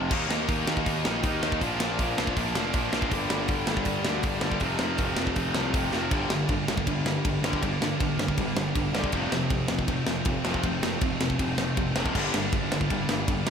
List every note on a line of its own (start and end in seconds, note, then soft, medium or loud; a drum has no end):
0.00 0.11 F2 medium
0.00 0.10 C3 medium
0.00 0.11 F3 medium
0.10 0.28 D#2 loud
0.10 0.28 D#3 medium
0.10 1.03 D#3 loud
0.10 0.29 G3 loud
0.10 0.30 A#3 loud
0.10 1.05 A#3 medium
0.10 0.29 D#4 medium
0.10 1.03 D#4 medium
0.10 kick loud
0.10 crash loud
0.29 0.47 D#2 medium
0.29 0.47 D#3 medium
0.29 0.48 G3 medium
0.29 0.49 A#3 medium
0.29 0.48 D#4 medium
0.29 snare loud
0.48 0.67 D#2 medium
0.48 0.66 D#3 medium
0.48 0.67 G3 medium
0.48 0.68 A#3 loud
0.48 0.67 D#4 loud
0.48 kick loud
0.48 open hi-hat medium
0.67 0.85 D#2 medium
0.67 0.84 D#3 medium
0.67 0.84 G3 medium
0.67 0.86 A#3 medium
0.67 0.85 D#4 medium
0.67 snare loud
0.77 kick medium
0.85 1.04 D#2 medium
0.85 1.03 D#3 medium
0.85 1.04 G3 medium
0.85 1.05 A#3 loud
0.85 1.05 D#4 medium
0.85 kick medium
0.85 open hi-hat medium
1.04 1.23 A#1 medium
1.04 1.21 D#3 medium
1.04 1.22 D#3 medium
1.04 1.22 G3 loud
1.04 1.24 A#3 medium
1.04 1.23 A#3 loud
1.04 1.22 D#4 medium
1.04 1.23 D#4 loud
1.04 snare loud
1.23 1.42 D#2 medium
1.23 1.40 D#3 medium
1.23 1.60 D#3 medium
1.23 1.40 G3 medium
1.23 1.42 A#3 medium
1.23 1.61 A#3 medium
1.23 1.42 D#4 loud
1.23 1.61 D#4 medium
1.23 kick loud
1.23 open hi-hat medium
1.41 1.61 D#2 medium
1.41 1.59 D#3 medium
1.41 1.60 D#3 medium
1.41 1.60 G3 medium
1.41 1.62 A#3 loud
1.41 1.62 A#3 medium
1.41 1.60 D#4 medium
1.41 1.60 D#4 loud
1.41 snare medium
1.52 kick medium
1.60 1.79 A#1 loud
1.60 2.53 A#2 medium
1.60 1.78 A#2 medium
1.60 1.79 D3 medium
1.60 2.54 F3 medium
1.60 1.79 F3 medium
1.60 1.81 A#3 loud
1.60 2.54 A#3 loud
1.60 1.81 D4 loud
1.60 kick medium
1.60 open hi-hat medium
1.79 1.98 A#1 medium
1.79 1.97 A#2 medium
1.79 1.98 D3 medium
1.79 1.98 F3 medium
1.79 2.00 A#3 medium
1.79 2.00 D4 medium
1.79 snare loud
1.99 2.17 A#1 medium
1.99 2.17 A#2 medium
1.99 2.17 D3 loud
1.99 2.18 F3 medium
1.99 2.19 A#3 loud
1.99 2.20 D4 loud
1.99 kick medium
1.99 open hi-hat medium
2.18 2.36 A#1 medium
2.18 2.36 A#2 medium
2.18 2.36 D3 medium
2.18 2.37 F3 medium
2.18 2.37 A#3 medium
2.18 2.38 D4 medium
2.18 snare loud
2.27 kick medium
2.37 2.55 A#1 loud
2.37 2.54 A#2 medium
2.37 2.54 D3 medium
2.37 2.55 F3 medium
2.37 2.56 A#3 medium
2.37 2.55 D4 loud
2.37 kick loud
2.37 open hi-hat medium
2.55 2.73 F1 medium
2.55 2.73 A#2 loud
2.55 2.72 A#2 medium
2.55 2.73 D3 loud
2.55 2.73 F3 medium
2.55 2.74 F3 loud
2.55 2.73 A#3 medium
2.55 2.74 A#3 loud
2.55 2.75 D4 loud
2.55 snare loud
2.73 2.92 A#1 loud
2.73 3.10 A#2 medium
2.73 2.91 A#2 medium
2.73 2.92 D3 medium
2.73 3.11 F3 medium
2.73 2.92 F3 medium
2.73 3.11 A#3 medium
2.73 2.93 A#3 medium
2.73 2.93 D4 medium
2.73 kick loud
2.73 open hi-hat medium
2.92 3.11 A#1 medium
2.92 3.10 A#2 medium
2.92 3.11 A#2 medium
2.92 3.10 D3 loud
2.92 3.11 F3 medium
2.92 3.10 A#3 medium
2.92 3.11 A#3 medium
2.92 3.11 D4 loud
2.92 snare loud
3.02 kick medium
3.11 3.30 G1 loud
3.11 4.04 G2 medium
3.11 3.29 G2 medium
3.11 3.29 D3 medium
3.11 4.04 D3 medium
3.11 3.30 G3 loud
3.11 4.04 G3 medium
3.11 3.30 A#3 medium
3.11 3.31 D4 loud
3.11 kick medium
3.11 open hi-hat medium
3.30 3.48 G1 medium
3.30 3.47 G2 medium
3.30 3.48 D3 medium
3.30 3.48 G3 medium
3.30 3.49 A#3 medium
3.30 3.49 D4 medium
3.30 snare loud
3.48 3.66 G1 medium
3.48 3.66 G2 medium
3.48 3.67 D3 loud
3.48 3.67 G3 loud
3.48 3.68 A#3 medium
3.48 3.68 D4 loud
3.48 kick loud
3.48 open hi-hat medium
3.67 3.85 G1 medium
3.67 3.84 G2 medium
3.67 3.86 D3 medium
3.67 3.86 G3 medium
3.67 3.86 A#3 loud
3.67 3.86 D4 loud
3.67 snare loud
3.77 kick medium
3.85 4.04 G1 medium
3.85 4.03 G2 medium
3.85 4.04 D3 medium
3.85 4.05 G3 medium
3.85 4.05 A#3 medium
3.85 4.06 D4 loud
3.85 kick medium
3.85 open hi-hat medium
4.05 4.23 D2 medium
4.05 4.23 G2 loud
4.05 4.22 G2 medium
4.05 4.23 D3 loud
4.05 4.23 D3 medium
4.05 4.23 G3 medium
4.05 4.24 G3 loud
4.05 4.24 A#3 loud
4.05 4.25 D4 loud
4.05 snare loud
4.23 4.42 G1 loud
4.23 4.60 G2 medium
4.23 4.41 G2 medium
4.23 4.61 D3 medium
4.23 4.42 D3 medium
4.23 4.43 G3 medium
4.23 4.61 G3 medium
4.23 4.43 A#3 medium
4.23 4.43 D4 loud
4.23 kick loud
4.23 open hi-hat medium
4.41 4.61 G1 medium
4.41 4.60 G2 medium
4.41 4.61 G2 medium
4.41 4.60 D3 medium
4.41 4.61 D3 medium
4.41 4.60 G3 medium
4.41 4.61 G3 medium
4.41 4.61 A#3 medium
4.41 4.61 D4 loud
4.41 snare loud
4.52 kick medium
4.60 4.80 F1 medium
4.60 4.78 F2 medium
4.60 5.54 F2 loud
4.60 4.79 C3 medium
4.60 5.55 C3 medium
4.60 4.79 F3 loud
4.60 5.54 F3 medium
4.60 4.80 A3 medium
4.60 4.80 C4 loud
4.60 kick medium
4.60 open hi-hat medium
4.79 4.98 F1 medium
4.79 4.97 F2 medium
4.79 4.98 C3 medium
4.79 4.98 F3 medium
4.79 4.99 A3 medium
4.79 4.99 C4 medium
4.79 snare loud
4.98 5.17 F1 medium
4.98 5.16 F2 medium
4.98 5.17 C3 medium
4.98 5.17 F3 loud
4.98 5.17 A3 loud
4.98 5.18 C4 loud
4.98 kick loud
4.98 open hi-hat medium
5.17 5.36 F1 medium
5.17 5.35 F2 medium
5.17 5.35 C3 medium
5.17 5.36 F3 medium
5.17 5.36 A3 medium
5.17 5.37 C4 medium
5.17 snare loud
5.27 kick medium
5.36 5.55 F1 loud
5.36 5.54 F2 medium
5.36 5.54 C3 medium
5.36 5.55 F3 medium
5.36 5.55 A3 medium
5.36 5.55 C4 medium
5.36 kick loud
5.36 open hi-hat medium
5.54 5.73 C2 medium
5.54 5.73 F2 medium
5.54 5.72 F2 medium
5.54 5.73 C3 loud
5.54 5.74 C3 medium
5.54 5.73 F3 medium
5.54 5.74 F3 loud
5.54 5.74 A3 loud
5.54 5.75 C4 loud
5.54 snare loud
5.73 5.92 F1 medium
5.73 6.10 F2 medium
5.73 5.91 F2 medium
5.73 5.92 C3 medium
5.73 6.11 C3 medium
5.73 5.92 F3 medium
5.73 6.11 F3 medium
5.73 5.93 A3 medium
5.73 5.93 C4 loud
5.73 kick loud
5.73 open hi-hat medium
5.92 6.11 F1 medium
5.92 6.10 F2 medium
5.92 6.11 F2 medium
5.92 6.11 C3 medium
5.92 6.10 F3 medium
5.92 6.11 F3 loud
5.92 6.11 A3 loud
5.92 6.11 C4 loud
5.92 snare medium
6.11 6.24 G1 loud
6.11 7.60 G2 medium
6.11 6.29 G2 medium
6.11 7.61 D3 medium
6.11 6.30 D3 medium
6.11 7.62 G3 medium
6.11 6.30 G3 loud
6.11 7.62 A#3 medium
6.11 7.62 D4 medium
6.11 kick loud
6.11 ride medium
6.29 6.43 G1 medium
6.29 6.48 G2 medium
6.29 6.48 D3 medium
6.29 snare loud
6.49 6.62 G1 medium
6.49 6.67 G2 medium
6.49 6.67 D3 medium
6.49 kick loud
6.49 ride medium
6.67 6.80 G1 medium
6.67 6.86 G2 medium
6.67 6.86 D3 medium
6.67 snare loud
6.77 kick medium
6.87 7.00 G1 loud
6.87 7.04 G2 medium
6.87 7.05 D3 medium
6.87 kick medium
6.87 ride medium
7.04 7.18 G1 medium
7.04 7.23 G2 medium
7.04 7.23 D3 medium
7.04 snare medium
7.24 7.38 G1 loud
7.24 7.42 G2 medium
7.24 7.42 D3 medium
7.24 kick loud
7.24 ride medium
7.42 7.55 G1 medium
7.42 7.61 G2 medium
7.42 7.61 D3 loud
7.42 7.61 G3 medium
7.42 snare loud
7.53 kick medium
7.62 7.75 G1 loud
7.62 9.12 G2 medium
7.62 7.79 G2 medium
7.62 9.12 D3 medium
7.62 7.80 D3 medium
7.62 9.13 G3 medium
7.62 9.13 A#3 medium
7.62 9.13 D4 medium
7.62 kick medium
7.62 ride medium
7.80 7.93 G1 medium
7.80 7.98 G2 medium
7.80 7.98 D3 medium
7.80 snare loud
7.99 8.13 G1 medium
7.99 8.17 G2 medium
7.99 8.17 D3 medium
7.99 kick loud
7.99 ride medium
8.17 8.31 G1 medium
8.17 8.36 G2 medium
8.17 8.36 D3 loud
8.17 snare loud
8.28 kick medium
8.38 8.51 G1 loud
8.38 8.55 G2 medium
8.38 8.55 D3 medium
8.38 kick loud
8.38 ride medium
8.56 8.69 G1 medium
8.56 8.73 G2 medium
8.56 8.73 D3 medium
8.56 snare loud
8.75 8.88 G1 medium
8.75 8.92 G2 medium
8.75 8.93 D3 medium
8.75 kick loud
8.75 ride medium
8.94 9.07 G1 medium
8.94 9.12 G2 loud
8.94 9.12 D3 medium
8.94 9.12 G3 loud
8.94 snare medium
9.04 kick medium
9.12 9.26 F1 loud
9.12 10.61 F2 medium
9.12 9.31 F2 medium
9.12 10.62 C3 medium
9.12 9.31 C3 loud
9.12 9.31 F3 loud
9.12 10.63 F3 medium
9.12 10.64 A3 medium
9.12 10.64 C4 medium
9.12 kick medium
9.12 ride medium
9.32 9.45 F1 medium
9.32 9.49 F2 medium
9.32 9.49 C3 medium
9.32 snare loud
9.50 9.63 F1 medium
9.50 9.67 F2 medium
9.50 9.67 C3 medium
9.50 kick loud
9.50 ride medium
9.68 9.83 F1 medium
9.68 9.86 F2 medium
9.68 9.86 C3 medium
9.68 snare loud
9.79 kick medium
9.87 10.01 F1 medium
9.87 10.05 F2 medium
9.87 10.05 C3 medium
9.87 kick loud
9.87 ride medium
10.07 10.20 F1 medium
10.07 10.24 F2 medium
10.07 10.24 C3 medium
10.07 snare medium
10.25 10.39 F1 medium
10.25 10.43 F2 medium
10.25 10.43 C3 medium
10.25 kick loud
10.25 ride medium
10.44 10.58 F1 medium
10.44 10.62 F2 medium
10.44 10.62 C3 loud
10.44 10.63 F3 loud
10.44 snare medium
10.54 kick medium
10.63 10.76 F1 loud
10.63 12.13 F2 medium
10.63 10.81 F2 medium
10.63 10.81 C3 medium
10.63 12.14 C3 medium
10.63 12.14 F3 loud
10.63 12.14 A3 loud
10.63 12.15 C4 medium
10.63 kick loud
10.63 ride medium
10.82 10.95 F1 medium
10.82 11.00 F2 medium
10.82 11.00 C3 medium
10.82 snare loud
11.01 11.14 F1 medium
11.01 11.19 F2 medium
11.01 11.19 C3 medium
11.01 kick loud
11.01 ride medium
11.20 11.34 F1 medium
11.20 11.38 F2 medium
11.20 11.38 C3 medium
11.20 snare loud
11.30 kick medium
11.39 11.52 F1 loud
11.39 11.57 F2 medium
11.39 11.57 C3 medium
11.39 kick loud
11.39 ride medium
11.58 11.71 F1 medium
11.58 11.76 F2 medium
11.58 11.76 C3 medium
11.58 snare loud
11.77 11.90 F1 loud
11.77 11.95 F2 medium
11.77 11.95 C3 medium
11.77 kick loud
11.77 ride medium
11.96 12.09 F1 medium
11.96 12.14 F2 medium
11.96 12.14 C3 medium
11.96 12.14 F3 loud
11.96 snare loud
12.06 kick medium
12.14 12.28 G1 loud
12.14 13.50 G2 medium
12.14 12.32 G2 medium
12.14 13.50 D3 medium
12.14 12.33 D3 medium
12.14 13.50 G3 medium
12.14 12.34 G3 loud
12.14 13.50 A#3 medium
12.14 13.50 D4 medium
12.14 kick medium
12.14 crash medium
12.34 12.47 G1 medium
12.34 12.51 G2 medium
12.34 12.51 D3 medium
12.34 snare loud
12.52 12.65 G1 loud
12.52 12.70 G2 medium
12.52 12.70 D3 medium
12.52 kick loud
12.52 ride medium
12.71 12.85 G1 medium
12.71 12.88 G2 medium
12.71 12.88 D3 medium
12.71 snare loud
12.81 kick medium
12.90 13.03 G1 medium
12.90 13.07 G2 medium
12.90 13.08 D3 medium
12.90 kick medium
12.90 ride medium
13.09 13.23 G1 medium
13.09 13.26 G2 medium
13.09 13.26 D3 medium
13.09 snare loud
13.28 13.41 G1 loud
13.28 13.45 G2 medium
13.28 13.46 D3 medium
13.28 kick loud
13.28 ride medium
13.47 13.50 G2 loud
13.47 snare loud